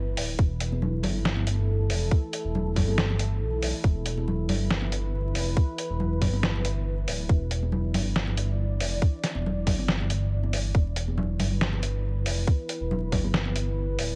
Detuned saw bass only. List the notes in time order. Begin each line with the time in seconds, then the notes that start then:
Already playing: G1
0.17 D1
0.39 E1
1.04 G1
1.90 F1
2.45 E1
2.76 G1
3.41 B1
3.63 B1
3.84 E1
4.49 G1
5.35 F1
5.90 E1
6.22 G1
7.08 D1
7.29 E1
7.94 G1
8.80 F1
9.35 E1
9.67 G1
10.32 G1
10.75 E1
11.40 G1
12.26 F1
12.81 E1
13.12 G1
13.99 D1